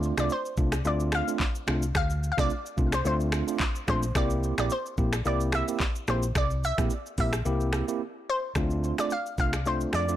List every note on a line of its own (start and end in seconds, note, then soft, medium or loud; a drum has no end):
0.00 0.11 D2 loud
0.00 0.14 A3 medium
0.00 0.14 C4 medium
0.00 0.14 D4 medium
0.00 0.14 F4 loud
0.00 0.16 D5 loud
0.00 shaker medium
0.17 0.28 C2 medium
0.17 0.31 A3 medium
0.17 0.31 C4 medium
0.17 0.31 D4 medium
0.17 0.31 F4 medium
0.17 0.31 D5 medium
0.17 finger snap medium
0.17 cross-stick medium
0.17 shaker medium
0.30 0.82 C5 medium
0.30 shaker medium
0.45 shaker medium
0.57 0.81 C2 loud
0.57 0.74 A3 medium
0.57 0.74 C4 medium
0.57 0.74 D4 medium
0.57 0.74 F4 medium
0.57 kick medium
0.57 shaker medium
0.72 finger snap medium
0.72 cross-stick loud
0.72 shaker medium
0.85 1.21 D2 loud
0.85 1.24 A3 medium
0.85 1.24 C4 medium
0.85 1.24 D4 medium
0.85 1.24 F4 loud
0.85 1.14 D5 medium
0.85 shaker medium
1.00 shaker medium
1.12 1.65 F5 medium
1.12 finger snap medium
1.12 cross-stick loud
1.12 shaker medium
1.27 1.41 A3 medium
1.27 1.41 C4 medium
1.27 1.41 D4 medium
1.27 1.41 F4 medium
1.27 shaker medium
1.40 kick medium
1.40 clap loud
1.40 shaker medium
1.55 shaker soft
1.67 1.91 C2 medium
1.67 1.83 A3 medium
1.67 1.83 C4 medium
1.67 1.84 D4 medium
1.67 1.84 F4 medium
1.67 finger snap medium
1.67 cross-stick loud
1.67 shaker medium
1.82 shaker loud
1.95 2.31 D2 loud
1.95 2.31 F5 loud
1.95 finger snap medium
1.95 kick loud
1.95 cross-stick loud
1.95 shaker medium
2.10 shaker medium
2.23 shaker medium
2.32 2.39 F5 medium
2.37 2.48 C2 medium
2.37 2.51 A3 medium
2.37 2.51 C4 medium
2.37 2.51 D4 medium
2.37 2.51 F4 medium
2.37 2.95 D5 loud
2.37 finger snap medium
2.37 kick loud
2.37 cross-stick medium
2.37 shaker medium
2.50 shaker medium
2.66 shaker medium
2.77 3.01 C2 medium
2.77 2.93 A3 medium
2.77 2.94 C4 medium
2.77 2.94 D4 medium
2.77 2.94 F4 medium
2.77 kick medium
2.77 shaker medium
2.92 3.06 C5 medium
2.92 finger snap medium
2.92 cross-stick loud
2.92 shaker medium
3.05 3.41 D2 loud
3.05 3.44 A3 medium
3.05 3.44 C4 medium
3.05 3.44 D4 medium
3.05 3.44 F4 loud
3.05 3.88 C5 medium
3.05 shaker medium
3.20 shaker medium
3.32 finger snap medium
3.32 cross-stick medium
3.32 shaker medium
3.47 3.61 A3 medium
3.47 3.61 C4 medium
3.47 3.61 D4 medium
3.47 3.61 F4 medium
3.47 shaker medium
3.60 kick loud
3.60 clap loud
3.60 shaker medium
3.75 shaker medium
3.87 4.11 A#1 loud
3.87 4.04 A3 medium
3.87 4.04 C4 medium
3.87 4.04 D4 medium
3.87 4.04 F4 medium
3.87 4.17 C5 medium
3.87 finger snap medium
3.87 kick medium
3.87 cross-stick loud
3.87 shaker medium
4.03 shaker loud
4.15 4.51 C2 loud
4.15 4.54 A#3 loud
4.15 4.54 C4 medium
4.15 4.54 E4 medium
4.15 4.54 G4 loud
4.15 4.58 D5 loud
4.15 finger snap medium
4.15 kick loud
4.15 cross-stick loud
4.15 shaker medium
4.30 shaker medium
4.43 shaker medium
4.58 4.68 A#1 medium
4.58 4.71 A#3 medium
4.58 4.72 C4 medium
4.58 4.72 E4 medium
4.58 4.72 G4 medium
4.58 4.65 D5 medium
4.58 finger snap medium
4.58 cross-stick loud
4.58 shaker medium
4.70 5.22 C5 medium
4.70 shaker medium
4.86 shaker medium
4.98 5.21 A#1 medium
4.98 5.14 A#3 medium
4.98 5.14 C4 medium
4.98 5.14 E4 medium
4.98 5.14 G4 medium
4.98 kick medium
4.98 shaker medium
5.13 finger snap medium
5.13 cross-stick loud
5.13 shaker medium
5.25 5.61 C2 loud
5.25 5.64 A#3 medium
5.25 5.65 C4 medium
5.25 5.65 E4 medium
5.25 5.65 G4 loud
5.25 5.39 D5 loud
5.25 shaker medium
5.40 shaker medium
5.52 6.05 E5 loud
5.52 finger snap medium
5.52 cross-stick loud
5.52 shaker medium
5.68 5.81 A#3 medium
5.68 5.82 C4 medium
5.68 5.82 E4 medium
5.68 5.82 G4 medium
5.68 shaker medium
5.80 kick medium
5.80 clap loud
5.80 shaker medium
5.95 shaker soft
6.08 6.31 A#1 loud
6.08 6.24 A#3 medium
6.08 6.24 C4 medium
6.08 6.24 E4 medium
6.08 6.24 G4 medium
6.08 6.35 C5 medium
6.08 finger snap medium
6.08 cross-stick loud
6.08 shaker medium
6.23 shaker loud
6.35 6.71 C2 loud
6.35 6.65 D5 loud
6.35 finger snap medium
6.35 kick loud
6.35 cross-stick loud
6.35 shaker medium
6.50 shaker medium
6.64 7.15 E5 loud
6.64 shaker medium
6.78 6.89 A#1 loud
6.78 6.92 A#3 medium
6.78 6.92 C4 medium
6.78 6.92 E4 medium
6.78 6.92 G4 medium
6.78 finger snap medium
6.78 kick loud
6.78 cross-stick medium
6.78 shaker medium
6.90 shaker medium
7.06 shaker medium
7.18 7.41 A#1 medium
7.18 7.34 A#3 medium
7.18 7.34 C4 medium
7.18 7.34 E4 medium
7.18 7.34 G4 medium
7.18 8.25 E5 medium
7.18 kick medium
7.18 open hi-hat medium
7.18 shaker medium
7.33 finger snap medium
7.33 cross-stick loud
7.33 shaker medium
7.45 7.81 C2 loud
7.45 7.85 A#3 medium
7.45 7.85 C4 medium
7.45 7.85 E4 medium
7.45 7.85 G4 loud
7.45 shaker medium
7.61 shaker medium
7.73 finger snap medium
7.73 cross-stick loud
7.73 shaker medium
7.88 8.01 A#3 medium
7.88 8.01 C4 medium
7.88 8.01 E4 medium
7.88 8.01 G4 medium
7.88 shaker medium
8.30 9.01 C5 loud
8.55 8.91 D2 loud
8.55 8.95 A3 medium
8.55 8.95 C4 medium
8.55 8.95 D4 medium
8.55 8.95 F4 loud
8.55 finger snap medium
8.55 kick loud
8.55 cross-stick loud
8.55 shaker medium
8.70 shaker medium
8.84 shaker medium
8.98 9.12 A3 medium
8.98 9.12 C4 medium
8.98 9.12 D4 medium
8.98 9.12 F4 medium
8.98 9.11 D5 medium
8.98 finger snap medium
8.98 cross-stick medium
8.98 shaker medium
9.10 9.37 F5 loud
9.10 shaker medium
9.26 shaker medium
9.38 9.84 C2 medium
9.38 9.54 A3 medium
9.38 9.54 C4 medium
9.38 9.54 D4 medium
9.38 9.55 F4 medium
9.38 9.65 F5 loud
9.38 kick medium
9.38 shaker medium
9.53 finger snap medium
9.53 cross-stick medium
9.53 shaker medium
9.66 10.05 A3 medium
9.66 10.05 C4 medium
9.66 10.05 D4 medium
9.66 10.05 F4 loud
9.66 9.92 C5 loud
9.66 shaker medium
9.81 shaker medium
9.93 10.16 F2 medium
9.93 10.16 D5 loud
9.93 finger snap medium
9.93 cross-stick medium
9.93 shaker soft
10.08 10.16 A3 medium
10.08 10.16 C4 medium
10.08 10.16 D4 medium
10.08 10.16 F4 medium
10.08 shaker medium